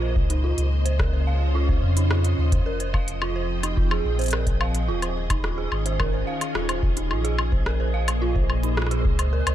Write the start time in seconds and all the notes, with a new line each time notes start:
Already playing: A#1 A#2 A#3 G#4 C5 D#5
0.02 C5
0.16 C#2, kick
0.30 D#4, closed hi-hat
0.44 C#3 F4
0.58 C#2, closed hi-hat
0.64 F4
0.79 C#4
0.85 C5, closed hi-hat
0.99 A#4, kick, cross-stick
1.13 C5
1.27 F5
1.55 F4
1.69 C5, kick
1.83 F2
1.97 D#4, closed hi-hat
2.11 F4, cross-stick
2.24 closed hi-hat
2.38 D#2
2.52 C5, kick, closed hi-hat
2.66 F1 F3 A#4
2.80 C5, closed hi-hat
2.94 F5, kick, high woodblock
3.08 closed hi-hat
3.21 C4 F4 G5, high woodblock
3.36 C5
3.63 D#4 G#4, closed hi-hat, high woodblock
3.77 F4, kick
3.91 G#4, high woodblock
4.05 A#1
4.19 C5, closed hi-hat
4.21 closed hi-hat
4.24 closed hi-hat
4.26 closed hi-hat
4.28 closed hi-hat
4.31 A#4, cross-stick, closed hi-hat, high woodblock
4.47 C5, kick, closed hi-hat
4.61 F5, high woodblock
4.75 closed hi-hat
4.88 D#1 D#3 F4
5.02 C5, closed hi-hat, high woodblock
5.14 C#4
5.30 D#4, kick, closed hi-hat, high woodblock
5.44 F4, cross-stick
5.58 G#4
5.72 G#1, high woodblock
5.86 C5, closed hi-hat
5.99 A#4, kick, high woodblock
6.13 C5
6.27 F5
6.41 closed hi-hat, high woodblock
6.55 D#1 F4, cross-stick
6.69 C5, closed hi-hat, high woodblock
6.83 kick
6.97 D#4, closed hi-hat
7.11 A#1 A#2 F4, high woodblock
7.24 G#4, closed hi-hat
7.39 A#3, high woodblock
7.52 C5, kick
7.66 A#4, cross-stick
7.77 C5
7.94 F5
8.08 closed hi-hat, high woodblock
8.22 F4
8.36 C5, kick
8.50 high woodblock
8.63 D#4, closed hi-hat
8.77 F4, cross-stick
8.82 cross-stick
8.87 cross-stick
8.91 G#4, closed hi-hat
9.05 C#2, kick
9.19 C5, closed hi-hat, high woodblock
9.33 C#3 A#4
9.47 C#2 C#4 C5, closed hi-hat, high woodblock